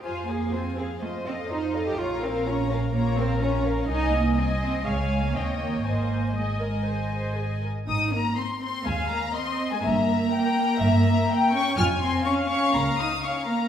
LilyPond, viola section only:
\new Staff \with { instrumentName = "Viola section" } { \time 4/4 \key aes \major \tempo 4 = 123 f'8 aes'8 f'8 aes'8 f'8 a'8 f'8 a'8 | f'8 bes'8 f'8 bes'8 f'8 bes'8 f'8 bes'8 | ees''4 ees''4 des''4 des''4 | c''4 ees''8 bes'8 c''8 c''8 aes'8 bes'8 |
ees'8 bes8 c'8 c'8 aes8 bes8 c'8. aes16 | bes2.~ bes8 des'8 | f'8 c'8 des'8 des'8 bes8 ees'8 des'8 bes8 | }